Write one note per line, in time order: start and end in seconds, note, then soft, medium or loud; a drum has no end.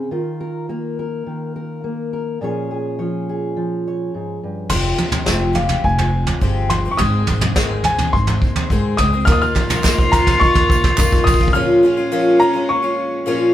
0.00 0.10 C#3 soft
0.11 1.25 D#3 medium
0.11 2.43 F4 soft
0.40 0.69 A#4 medium
0.69 1.83 A#3 soft
0.69 0.99 A#4 soft
0.99 1.55 A#4 soft
1.26 2.38 D#3 soft
1.56 2.12 A#4 soft
1.84 2.41 A#3 soft
2.13 2.38 A#4 medium
2.41 4.13 A#2 medium
2.41 2.97 F3 soft
2.41 4.68 C#4 soft
2.41 2.70 G#4 soft
2.41 2.98 C#5 medium
2.71 3.28 G#4 soft
2.99 3.55 F3 soft
2.99 3.85 C#5 soft
3.29 4.68 G#4 soft
3.57 4.67 F3 medium
3.88 4.69 C#5 soft
4.14 4.42 G#2 medium
4.43 4.71 G2 soft
4.69 4.92 F1 medium
4.69 4.99 F2 medium
4.69 4.99 C3 medium
4.69 4.94 F3 medium
4.69 4.96 G#3 medium
4.69 4.97 C4 medium
4.69 4.98 G4 medium
4.69 5.59 C6 medium
4.69 kick soft
4.69 floor tom medium
4.69 crash medium
4.96 5.12 F3 soft
4.96 5.12 G#3 soft
4.96 5.12 C4 medium
4.96 5.11 G4 soft
4.96 floor tom medium
5.12 5.25 F3 soft
5.12 5.26 G#3 soft
5.12 5.26 C4 soft
5.12 5.26 G4 soft
5.12 floor tom medium
5.12 mid tom medium
5.26 5.71 F1 medium
5.26 5.56 F2 medium
5.26 5.55 C3 medium
5.26 5.52 F3 medium
5.26 5.54 G#3 medium
5.26 5.54 C4 medium
5.26 5.55 G4 medium
5.26 kick soft
5.26 snare medium
5.53 5.98 F3 soft
5.53 5.99 G#3 soft
5.53 5.98 C4 medium
5.53 5.99 G4 medium
5.53 5.85 F5 medium
5.53 floor tom medium
5.69 floor tom medium
5.84 6.28 F1 medium
5.84 6.73 G#5 medium
5.84 kick soft
5.98 6.41 F3 soft
5.98 6.42 G#3 soft
5.98 6.42 C4 soft
5.98 floor tom medium
6.27 floor tom medium
6.41 6.85 G1 medium
6.41 6.70 F2 medium
6.41 6.71 C3 medium
6.41 6.69 F3 medium
6.41 6.70 G#3 medium
6.41 6.71 C4 medium
6.41 6.71 G4 medium
6.41 kick medium
6.70 6.85 F3 medium
6.70 6.85 G#3 medium
6.70 6.85 C4 medium
6.70 6.84 G4 medium
6.70 6.93 C6 medium
6.70 floor tom medium
6.85 6.99 F3 soft
6.85 6.98 G#3 soft
6.85 6.99 C4 soft
6.85 7.00 G4 soft
6.91 6.99 C#6 medium
6.97 7.21 G#1 medium
6.97 7.28 G#2 medium
6.97 7.28 D#3 medium
6.97 7.26 G#3 medium
6.97 7.27 C4 medium
6.97 7.28 D#4 medium
6.97 7.29 G#4 medium
6.97 7.87 D#6 medium
6.97 kick medium
6.97 floor tom medium
7.27 7.51 G#1 medium
7.27 7.42 G#3 soft
7.27 7.43 C4 soft
7.27 7.42 D#4 medium
7.27 7.40 G#4 medium
7.27 floor tom medium
7.41 7.55 G#3 soft
7.41 7.56 C4 soft
7.41 7.57 D#4 soft
7.41 7.56 G#4 medium
7.41 floor tom medium
7.41 mid tom medium
7.56 8.00 G#1 medium
7.56 7.85 G#2 medium
7.56 7.85 D#3 medium
7.56 7.84 G#3 medium
7.56 7.85 C4 medium
7.56 7.86 D#4 medium
7.56 7.86 G#4 medium
7.56 kick medium
7.56 snare medium
7.84 7.99 G#3 medium
7.84 8.00 C4 medium
7.84 7.99 D#4 medium
7.84 8.15 G#5 medium
7.84 floor tom medium
7.88 7.98 G#4 medium
7.98 8.29 G#3 soft
7.98 8.28 C4 soft
7.98 8.27 D#4 soft
7.98 8.26 G#4 soft
7.98 floor tom medium
8.13 8.36 G#1 medium
8.13 8.95 C6 medium
8.13 kick medium
8.27 8.57 G#3 soft
8.27 8.56 C4 soft
8.27 8.55 D#4 soft
8.27 8.54 G#4 soft
8.27 floor tom medium
8.42 8.64 D#2 medium
8.42 kick medium
8.56 8.70 G#3 soft
8.56 8.71 C4 soft
8.56 8.71 D#4 soft
8.56 8.71 G#4 soft
8.56 floor tom medium
8.70 8.99 G#2 medium
8.70 8.93 G#2 medium
8.70 9.00 D#3 medium
8.70 8.98 G#3 medium
8.70 8.99 C4 medium
8.70 8.99 D#4 medium
8.70 9.00 G#4 medium
8.70 kick medium
8.97 9.21 C#2 medium
8.97 9.14 G#3 medium
8.97 9.14 C4 medium
8.97 9.12 D#4 medium
8.97 9.28 D#6 medium
8.97 kick medium
8.97 floor tom medium
9.03 9.12 G#4 medium
9.13 9.26 G#3 soft
9.13 9.27 C4 soft
9.13 9.27 D#4 soft
9.13 9.28 G#4 medium
9.25 9.49 D#2 loud
9.25 11.52 D#2 medium
9.25 9.54 D#3 medium
9.25 11.52 D#3 medium
9.25 9.75 A#3 medium
9.25 9.54 A#3 medium
9.25 9.75 D#4 medium
9.25 9.55 D#4 medium
9.25 11.52 F4 loud
9.25 9.75 F4 medium
9.25 9.56 F4 medium
9.25 9.76 D#5 medium
9.25 9.33 F6 medium
9.25 kick medium
9.25 floor tom medium
9.25 tambourine soft
9.32 9.41 D#6 medium
9.42 10.10 F6 medium
9.42 tambourine soft
9.55 9.70 D#3 soft
9.55 9.71 A#3 medium
9.55 9.69 D#4 medium
9.55 9.68 F4 medium
9.55 kick medium
9.55 clap medium
9.55 floor tom medium
9.69 9.83 A#3 soft
9.69 9.83 D#4 soft
9.69 9.84 F4 soft
9.69 floor tom medium
9.69 mid tom medium
9.69 tambourine medium
9.82 10.28 D#2 medium
9.82 10.10 D#3 medium
9.82 10.11 A#3 medium
9.82 10.32 A#3 medium
9.82 10.32 D#4 medium
9.82 10.12 D#4 medium
9.82 10.13 F4 medium
9.82 10.33 F4 medium
9.82 10.33 D#5 medium
9.82 kick medium
9.82 snare medium
9.82 clap medium
9.82 tambourine medium
9.98 kick loud
10.11 10.55 D#3 medium
10.11 10.56 A#3 medium
10.11 10.54 D#4 medium
10.11 10.53 F4 medium
10.11 10.39 A#5 medium
10.11 kick medium
10.11 floor tom medium
10.11 tambourine medium
10.27 kick medium
10.27 floor tom medium
10.27 tambourine soft
10.40 10.85 D#2 medium
10.40 10.89 A#3 medium
10.40 10.89 D#4 medium
10.40 10.89 F4 medium
10.40 10.90 D#5 medium
10.40 11.29 C#6 medium
10.40 kick medium
10.54 10.97 A#3 soft
10.54 10.99 D#4 soft
10.54 10.98 F4 medium
10.54 kick loud
10.54 floor tom medium
10.70 kick loud
10.70 tambourine medium
10.84 kick medium
10.84 floor tom medium
10.97 11.42 F2 medium
10.97 11.25 D#3 medium
10.97 11.46 A#3 medium
10.97 11.27 A#3 medium
10.97 11.46 D#4 medium
10.97 11.28 D#4 medium
10.97 11.46 F4 medium
10.97 11.28 F4 medium
10.97 11.46 D#5 medium
10.97 kick loud
10.97 clap medium
10.97 tambourine medium
11.12 kick loud
11.24 11.56 D#6 medium
11.24 kick loud
11.24 floor tom medium
11.28 11.41 D#4 medium
11.28 11.39 F4 medium
11.28 tambourine medium
11.34 kick loud
11.41 11.54 A#3 soft
11.41 11.55 D#4 soft
11.41 11.55 F4 medium
11.41 kick loud
11.48 kick loud
11.53 13.54 A#1 medium
11.53 11.84 A#2 medium
11.53 13.54 A#2 medium
11.53 11.82 F3 medium
11.53 11.83 G#3 medium
11.53 12.03 A#3 medium
11.53 13.22 C#4 loud
11.53 11.84 C#4 medium
11.53 12.03 F4 medium
11.53 11.85 F4 medium
11.53 12.04 G#4 medium
11.53 12.04 C#5 medium
11.53 12.43 F6 medium
11.83 11.98 F3 medium
11.83 11.98 G#3 medium
11.83 11.97 C#4 medium
11.83 11.96 F4 medium
11.97 12.11 G#3 soft
11.97 12.11 C#4 soft
11.97 12.12 F4 medium
12.11 12.41 A#2 medium
12.11 12.38 F3 medium
12.11 12.39 G#3 medium
12.11 12.60 A#3 medium
12.11 12.41 C#4 medium
12.11 12.60 F4 medium
12.11 12.42 F4 medium
12.11 12.60 G#4 medium
12.11 12.60 C#5 medium
12.39 12.55 F3 medium
12.39 12.55 G#3 medium
12.39 12.54 C#4 medium
12.39 12.52 F4 medium
12.39 12.70 A#5 medium
12.53 12.84 G#3 soft
12.53 12.82 C#4 medium
12.53 12.81 F4 medium
12.69 13.17 A#3 medium
12.69 13.17 F4 medium
12.69 13.18 G#4 medium
12.69 13.18 C#5 medium
12.69 13.51 C#6 medium
12.82 13.26 G#3 soft
12.82 13.26 C#4 medium
12.82 13.26 F4 medium
13.26 13.54 A#2 medium
13.26 13.53 F3 medium
13.26 13.54 G#3 medium
13.26 13.54 A#3 medium
13.26 13.54 C#4 medium
13.26 13.54 F4 medium
13.26 13.54 G#4 medium
13.26 13.54 C#5 medium